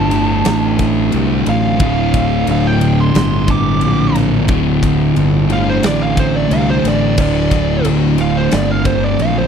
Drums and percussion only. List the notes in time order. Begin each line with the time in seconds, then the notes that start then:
0.11 ride
0.45 snare, ride
0.79 kick, ride
1.12 ride
1.46 ride
1.80 kick, ride
2.14 kick, ride
2.47 ride
2.81 ride
3.15 snare, ride
3.48 kick, ride
3.81 ride
4.15 snare, ride
4.48 kick, ride
4.83 kick, ride
5.16 ride
5.50 ride
5.83 snare, ride
6.17 kick, ride
6.51 ride
6.85 snare, ride
7.17 kick, crash
7.51 kick, ride
7.85 ride
8.18 ride
8.51 snare, ride
8.85 kick, ride
9.19 ride